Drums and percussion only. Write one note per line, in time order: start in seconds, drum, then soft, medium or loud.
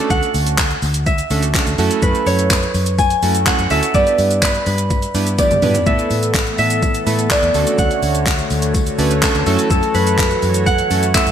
0.10 kick loud
0.10 tambourine soft
0.10 shaker medium
0.23 closed hi-hat medium
0.23 shaker medium
0.34 open hi-hat medium
0.34 tambourine soft
0.34 shaker soft
0.47 closed hi-hat medium
0.47 shaker medium
0.58 kick loud
0.58 clap loud
0.58 tambourine medium
0.58 shaker medium
0.71 closed hi-hat soft
0.71 shaker soft
0.82 open hi-hat medium
0.82 tambourine soft
0.82 shaker soft
0.94 closed hi-hat medium
0.94 shaker medium
1.06 kick loud
1.06 tambourine soft
1.06 shaker medium
1.18 closed hi-hat medium
1.18 shaker medium
1.30 open hi-hat medium
1.30 tambourine medium
1.30 shaker medium
1.43 closed hi-hat medium
1.43 shaker medium
1.54 kick loud
1.54 clap loud
1.54 tambourine medium
1.54 shaker medium
1.67 closed hi-hat medium
1.67 shaker medium
1.78 open hi-hat medium
1.78 tambourine medium
1.78 shaker medium
1.91 closed hi-hat medium
1.91 shaker medium
2.03 kick loud
2.03 shaker medium
2.15 closed hi-hat soft
2.15 shaker soft
2.27 open hi-hat medium
2.27 tambourine soft
2.27 shaker soft
2.39 closed hi-hat medium
2.39 shaker medium
2.50 kick loud
2.50 clap loud
2.50 tambourine medium
2.50 shaker medium
2.63 closed hi-hat soft
2.63 shaker soft
2.74 open hi-hat medium
2.74 tambourine soft
2.74 shaker soft
2.86 closed hi-hat medium
2.86 shaker medium
2.99 kick loud
2.99 tambourine medium
2.99 shaker medium
3.10 closed hi-hat medium
3.10 shaker medium
3.23 open hi-hat medium
3.23 tambourine medium
3.23 shaker medium
3.35 closed hi-hat medium
3.35 shaker medium
3.47 kick loud
3.47 clap loud
3.47 tambourine medium
3.47 shaker medium
3.59 closed hi-hat medium
3.59 shaker medium
3.70 open hi-hat medium
3.70 tambourine medium
3.70 shaker medium
3.83 closed hi-hat medium
3.83 shaker medium
3.94 kick loud
3.94 tambourine soft
3.94 shaker medium
4.07 closed hi-hat soft
4.07 shaker medium
4.18 open hi-hat medium
4.18 tambourine soft
4.18 shaker soft
4.31 closed hi-hat medium
4.31 shaker medium
4.42 kick loud
4.42 clap loud
4.42 tambourine medium
4.42 shaker medium
4.55 closed hi-hat soft
4.55 shaker soft
4.66 open hi-hat medium
4.66 tambourine soft
4.66 shaker soft
4.78 closed hi-hat medium
4.78 shaker medium
4.91 kick loud
4.91 tambourine soft
4.91 shaker medium
5.02 closed hi-hat medium
5.02 shaker medium
5.15 open hi-hat medium
5.15 tambourine medium
5.15 shaker medium
5.27 closed hi-hat medium
5.27 shaker medium
5.38 kick loud
5.38 high tom medium
5.38 tambourine medium
5.38 shaker medium
5.51 closed hi-hat medium
5.51 mid tom medium
5.51 shaker medium
5.62 mid tom loud
5.62 open hi-hat medium
5.62 tambourine medium
5.62 shaker medium
5.75 closed hi-hat medium
5.75 floor tom loud
5.75 shaker medium
5.87 kick loud
5.87 shaker medium
5.99 closed hi-hat soft
5.99 shaker soft
6.11 open hi-hat medium
6.11 shaker soft
6.23 closed hi-hat medium
6.23 shaker medium
6.34 kick loud
6.34 clap loud
6.34 tambourine medium
6.34 shaker medium
6.47 closed hi-hat soft
6.47 shaker soft
6.58 open hi-hat medium
6.58 tambourine soft
6.58 shaker soft
6.70 closed hi-hat medium
6.70 shaker medium
6.83 kick loud
6.83 tambourine medium
6.83 shaker medium
6.94 closed hi-hat medium
6.94 shaker medium
7.07 open hi-hat medium
7.07 tambourine medium
7.07 shaker medium
7.19 closed hi-hat medium
7.19 shaker medium
7.30 kick loud
7.30 clap loud
7.30 tambourine medium
7.30 shaker medium
7.43 closed hi-hat medium
7.43 shaker medium
7.54 open hi-hat medium
7.54 tambourine medium
7.54 shaker medium
7.67 closed hi-hat medium
7.67 shaker medium
7.79 kick loud
7.79 tambourine soft
7.79 shaker medium
7.91 closed hi-hat medium
7.91 shaker soft
8.03 open hi-hat medium
8.03 shaker soft
8.15 closed hi-hat medium
8.15 shaker medium
8.26 kick loud
8.26 clap loud
8.26 tambourine medium
8.26 shaker medium
8.39 closed hi-hat soft
8.39 shaker soft
8.50 open hi-hat medium
8.50 tambourine medium
8.50 shaker soft
8.62 closed hi-hat medium
8.62 shaker medium
8.75 kick loud
8.75 tambourine medium
8.75 shaker medium
8.87 closed hi-hat medium
8.87 shaker medium
8.99 open hi-hat medium
8.99 tambourine medium
8.99 shaker medium
9.11 closed hi-hat medium
9.11 shaker medium
9.23 kick loud
9.23 clap loud
9.23 tambourine medium
9.23 shaker medium
9.35 closed hi-hat medium
9.35 shaker medium
9.46 open hi-hat medium
9.46 tambourine medium
9.46 shaker medium
9.59 closed hi-hat medium
9.59 shaker medium
9.71 kick loud
9.71 tambourine soft
9.71 shaker medium
9.83 closed hi-hat soft
9.83 shaker soft
9.95 open hi-hat medium
9.95 shaker medium
10.07 closed hi-hat medium
10.07 shaker medium
10.18 kick loud
10.18 clap loud
10.18 tambourine medium
10.18 shaker medium
10.31 closed hi-hat soft
10.31 shaker soft
10.42 open hi-hat medium
10.42 tambourine soft
10.42 shaker soft
10.54 closed hi-hat medium
10.54 shaker medium
10.67 kick loud
10.67 tambourine medium
10.67 shaker medium
10.78 closed hi-hat medium
10.78 shaker medium
10.91 open hi-hat medium
10.91 tambourine medium
10.91 shaker medium
11.03 closed hi-hat medium
11.03 shaker medium
11.15 kick loud
11.15 clap loud
11.15 tambourine medium
11.15 shaker medium
11.27 closed hi-hat medium
11.27 shaker medium